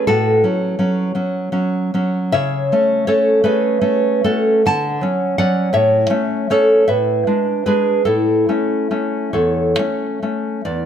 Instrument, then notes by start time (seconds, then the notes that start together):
nylon-string guitar
0.07 A2 F#4 A4
0.44 F#3 C#4
0.79 F#3 C#4
1.15 F#3 C#4
1.52 F#3 C#4
1.94 F#3 C#4
2.32 C#3 C#5 E5
2.72 A3 C#4
3.07 A3 C#4 A4 C#5
3.44 A3 C#4 G#4 B4
3.81 A3 C#4
4.24 A3 C#4 F#4 A4
4.66 D3 F#5 A5
5.01 F#3 C#4
5.38 F#3 C#4 D5 F#5
5.73 A2 C#5 E5
6.10 A3 C#4
6.50 A3 C#4 A4 C#5
6.88 A2 B4 E5
7.27 G#3 D4
7.66 G#3 D4 G#4 B4
8.05 A2 E4 A4
8.49 A3 C#4
8.91 A3 C#4
9.33 E2 A4 C#5
9.79 A3 C#4
10.22 A3 C#4
10.65 E2 D5